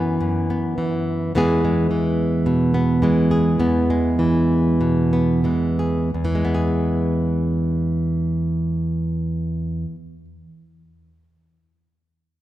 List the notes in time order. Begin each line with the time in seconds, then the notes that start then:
Already playing: F#2 E3 B3 E4
0.21 F#2
0.50 B3
0.78 E3
1.35 E2 E3 G#3 B3 G#4
1.65 G#3
1.91 E3
2.46 B2
2.74 B3
3.02 E3 G#3
3.31 G#4
3.59 E2 B3
3.90 G#3
4.19 E3
4.81 B2
5.13 B3
5.44 E3 G#3
5.79 G#4
6.14 E2
6.25 E3
6.35 G#3
6.45 B3
6.55 G#4